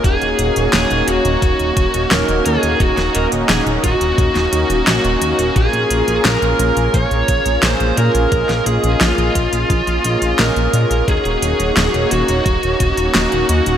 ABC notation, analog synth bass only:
X:1
M:4/4
L:1/16
Q:1/4=87
K:Ebdor
V:1 name="Analog synth bass" clef=bass
E,,, E,,, E,,, E,,, E,,, E,,, E,,, E,,, E,,, E,,, E,,, E,,, E,,, E,,, E,, E,,, | E,,, E,,, E,,, E,,, E,,, E,,, E,,, E,,, E,,, E,,, E,, E,,, B,,, E,,, E,, E,,, | B,,, B,,, B,,, B,,, B,,, B,,, B,,, B,,, B,,, B,,, B,,, B,,, B,,, B,,, B,, B,,, | B,,, B,,, B,,, B,,, B,,, B,,, B,,, B,,, B,,, B,,, B,,, B,,, B,,, B,,, B,, B,,, |
E,,, E,,, E,,, E,,, E,,, E,,, E,,, E,,, E,,, E,,, E,,, E,,, E,,, E,,, E,, E,,, |]